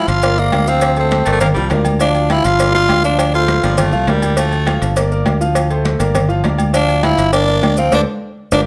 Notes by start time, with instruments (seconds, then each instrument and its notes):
Already playing: grand piano F3 F4 F5
0.08 fingered electric bass G1, tenor saxophone F4, cowbell, maracas
0.22 grand piano A#3 A#4 D5, cowbell, high conga, low agogo, maracas
0.38 grand piano A#3 A#4 D5, tenor saxophone A#3, high conga, maracas
0.52 fingered electric bass D2, cowbell, high conga, low timbale, low agogo, maracas
0.67 grand piano F3 F4 F5, tenor saxophone C4, high conga, maracas
0.81 cowbell, high conga, low agogo, maracas
0.96 grand piano A3 A4 C5, tenor saxophone C4, high conga, low agogo, maracas
1.11 cowbell, high conga, low timbale, maracas
1.25 fingered electric bass G1, baritone saxophone A3, grand piano A#3 A#4 D5, cowbell, high conga, low agogo, maracas
1.32 baritone saxophone A3
1.41 baritone saxophone A#3, cowbell, high conga, low conga, low agogo, maracas
1.54 fingered electric bass C2, grand piano F3 F4 F5, baritone saxophone G3, high conga, maracas
1.70 fingered electric bass D2, baritone saxophone F3, grand piano A#3 A#4 D5, cowbell, high conga, low timbale, low agogo, maracas
1.85 high conga, low agogo, maracas
1.99 grand piano F3 F4 F5, tenor saxophone D4, cowbell, high conga, low agogo, maracas
2.15 low agogo, maracas
2.30 grand piano F3 F4 F5, tenor saxophone E4, cowbell, high conga, low timbale, low agogo, maracas
2.44 fingered electric bass G1, tenor saxophone F4, cowbell, maracas
2.59 grand piano A#3 A#4 D5, cowbell, high conga, low agogo, maracas
2.74 grand piano A#3 A#4 D5, tenor saxophone F4, high conga, maracas
2.89 fingered electric bass D2, cowbell, high conga, low timbale, low agogo, maracas
3.03 grand piano F3 F4 F5, tenor saxophone D4, high conga, maracas
3.19 cowbell, high conga, low agogo, maracas
3.34 grand piano A3 A4 C5, tenor saxophone F4, high conga, low agogo, maracas
3.48 cowbell, high conga, low timbale, maracas
3.63 fingered electric bass G1, baritone saxophone F3, grand piano A#3 A#4 D5, cowbell, high conga, low agogo, maracas
3.78 baritone saxophone A3, cowbell, high conga, low conga, low agogo, maracas
3.92 fingered electric bass C2, grand piano F3 F4 F5, high conga, maracas
4.07 fingered electric bass D2, baritone saxophone G3, grand piano A#3 A#4 D5, cowbell, high conga, low timbale, low agogo, maracas
4.22 high conga, low agogo, maracas
4.37 grand piano F3 F4 F5, baritone saxophone A3, cowbell, high conga, low agogo, maracas
4.52 high conga, low agogo, maracas
4.66 grand piano F3 F4 F5, cowbell, high conga, low timbale, low agogo, maracas
4.82 fingered electric bass G1, cowbell, maracas
4.96 grand piano A#3 A#4 D5, cowbell, high conga, low agogo, maracas
5.11 grand piano A#3 A#4 D5, high conga, maracas
5.26 fingered electric bass D2, cowbell, high conga, low timbale, low agogo, maracas
5.41 grand piano F3 F4 F5, high conga, maracas
5.55 cowbell, high conga, low agogo, maracas
5.70 grand piano A3 A4 C5, high conga, low agogo, maracas
5.85 cowbell, high conga, low timbale, maracas
5.99 fingered electric bass G1, grand piano A#3 A#4 D5, cowbell, high conga, low agogo, maracas
6.15 cowbell, high conga, low conga, low agogo, maracas
6.29 grand piano F3 F4 F5, high conga, maracas
6.44 fingered electric bass D2, grand piano A#3 A#4 D5, cowbell, high conga, low timbale, low agogo, maracas
6.58 high conga, low agogo, maracas
6.73 grand piano F3 F4 F5, tenor saxophone D4, cowbell, low agogo, maracas
6.89 high conga, low agogo, maracas
7.03 grand piano F3 F4 F5, tenor saxophone E4, cowbell, high conga, low timbale, low agogo, maracas
7.18 fingered electric bass G1, cowbell, maracas
7.33 grand piano A#3 A#4 D5, tenor saxophone D4, cowbell, high conga, low agogo, maracas
7.48 grand piano A#3 A#4 D5, high conga, maracas
7.63 fingered electric bass D2, cowbell, high conga, low timbale, low agogo, maracas
7.77 grand piano F3 F4 F5, tenor saxophone C4, high conga, maracas
7.92 fingered electric bass D2, tenor saxophone D4, grand piano A4 C5 D5, cowbell, high conga, high timbale, maracas
8.52 fingered electric bass G1, tenor saxophone D4, grand piano F4 G4 A#4, cowbell, high conga, high timbale, maracas